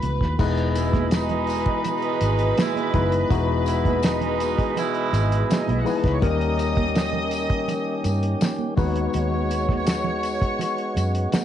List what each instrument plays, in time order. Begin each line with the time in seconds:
Already playing: tine electric piano A3 B3 E4 F#4 B4, string section B4 B5
0.03 fingered electric bass C#2, closed hi-hat, muted conga, low conga
0.21 fingered electric bass D#2, kick, snare
0.39 fingered electric bass E1, tonewheel organ E3 G#4 D#5, tine electric piano G#3 B3 D#4 E4 B4, string section B4 B5, kick, crash, tambourine, muted conga
0.57 closed hi-hat
0.76 horn section B2 G#3 E4, closed hi-hat, tambourine, muted conga
0.94 kick, snare, closed hi-hat, high conga
1.11 horn section B2 G#3 D#4, snare, closed hi-hat, tambourine
1.29 closed hi-hat, low conga
1.47 open hi-hat, tambourine, muted conga
1.66 kick, closed hi-hat
1.85 horn section B2 G#3 D#4, closed hi-hat, tambourine, low conga
2.02 closed hi-hat
2.21 fingered electric bass G#1, closed hi-hat, tambourine
2.39 closed hi-hat
2.58 horn section B2 G#3 E4, snare, closed hi-hat, tambourine, high conga
2.76 closed hi-hat, high conga
2.94 fingered electric bass F#1, tine electric piano G#3 B3 D#4 E4 B4, kick, closed hi-hat, low conga
3.12 closed hi-hat
3.30 fingered electric bass E1, tine electric piano G#3 B3 D#4 E4 F#4, kick, closed hi-hat, tambourine, muted conga
3.66 horn section B2 G#3 E4, closed hi-hat, tambourine
3.85 kick, closed hi-hat, high conga
4.03 horn section B2 G#3 D#4, snare, closed hi-hat, tambourine
4.21 closed hi-hat, low conga
4.40 closed hi-hat, tambourine, muted conga
4.58 kick, closed hi-hat
4.76 horn section B2 G#3 E4, closed hi-hat, tambourine, low conga
4.94 closed hi-hat
5.13 fingered electric bass G#1, closed hi-hat, tambourine, muted conga
5.32 closed hi-hat
5.49 snare, closed hi-hat, tambourine, muted conga, high conga
5.59 string section D#4 D#5
5.68 fingered electric bass B1, string section E4 E5, closed hi-hat, high conga
5.78 string section F#4 F#5
5.85 tine electric piano G#3 B3 D#4 E4 B4, string section G#4 G#5, open hi-hat, tambourine, low conga
5.95 string section A4 A5
6.04 fingered electric bass C#2, string section B4 B5, kick, snare, closed hi-hat
6.13 string section C#5 C#6
6.21 fingered electric bass D#2, tonewheel organ D#3 C#4 G4, tine electric piano G3 A#3 C#4 D#4 A#4, string section D#5 D#6, kick, closed hi-hat, muted conga
6.41 closed hi-hat
6.59 closed hi-hat, tambourine, muted conga
6.77 kick, closed hi-hat, high conga
6.95 snare, closed hi-hat, tambourine, muted conga
7.13 low conga
7.31 closed hi-hat, tambourine
7.50 kick, closed hi-hat
7.68 closed hi-hat, tambourine, low conga
8.04 fingered electric bass G2, closed hi-hat, tambourine, muted conga
8.23 closed hi-hat
8.41 snare, closed hi-hat, tambourine, high conga
8.59 high conga
8.77 fingered electric bass D#2, tine electric piano G#3 B3 D#4 F#4 B4, tonewheel organ G#3 B3 F#4, string section C#5 C#6, kick, open hi-hat, tambourine, muted conga, low conga
8.96 closed hi-hat
9.13 fingered electric bass D#2, closed hi-hat, tambourine, muted conga
9.32 high conga
9.51 closed hi-hat, tambourine
9.68 kick, snare, closed hi-hat, high conga
9.86 snare, closed hi-hat, tambourine
10.04 low conga
10.23 closed hi-hat, tambourine
10.42 kick, closed hi-hat
10.59 closed hi-hat, tambourine, muted conga, low conga
10.78 closed hi-hat
10.96 fingered electric bass F#2, closed hi-hat, tambourine, muted conga
11.15 closed hi-hat
11.32 muted fingered electric bass stroke, snare, closed hi-hat, tambourine, high conga